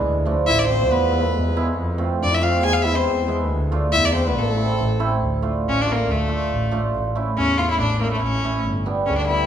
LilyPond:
<<
  \new Staff \with { instrumentName = "Violin" } { \time 2/4 \key a \minor \tempo 4 = 139 r4 e''16 d''16 c''8 | b'4. r8 | r4 d''16 e''16 f''8 | gis''16 f''16 e''16 c''8. r8 |
r4 e''16 d''16 c''16 b'16 | a'4. r8 | \key d \minor r4 cis'16 d'16 bes8 | a4. r8 |
r4 cis'8 f'16 e'16 | d'8 bes16 a16 cis'4 | r4 cis'16 d'16 e'8 | }
  \new Staff \with { instrumentName = "Hammered dulcimer" } { \time 2/4 \key a \minor r8 <f a d'>16 r8. <f a d'>16 r16 | r8 <gis b e'>16 r8. <gis b e'>16 r16 | r8 <a c' f'>16 r8. <a c' f'>16 r16 | r8 <gis b e'>16 r8. <gis b e'>16 r16 |
r8 <a d' f'>16 r8. <a d' f'>16 r16 | r8 <a c' e'>16 r8. <a c' e'>16 r16 | \key d \minor r8 <a d' f'>16 r8. <a d' f'>16 r16 | r8 <a d' f'>16 r8. <a d' f'>16 r16 |
r8 <a cis' e'>16 r8. <a cis' e'>16 r16 | r8 <a cis' e'>16 r8. <a cis' e'>16 r16 | r8 <g b d'>16 r8. <g b d'>16 r16 | }
  \new Staff \with { instrumentName = "Trombone" } { \time 2/4 \key a \minor r4 e'8 c'8 | b4. r8 | r4 d'16 e'16 f'8 | gis'8 e'16 c'8. r8 |
r4 e'8 c'16 b16 | a4. r8 | \key d \minor r2 | r2 |
r2 | r2 | r4 cis16 d8. | }
  \new Staff \with { instrumentName = "Double bass" } { \clef bass \time 2/4 \key a \minor d,4 a,,4 | e,4 e,4 | f,4 f,4 | e,4 e,4 |
d,4 e,4 | a,,4 a,,4 | \key d \minor d,8 r8 a,,4 | d,8 r8 a,,4 |
a,,8 r8 e,4 | a,,8 r8 a,,4 | g,,8 r8 d,4 | }
>>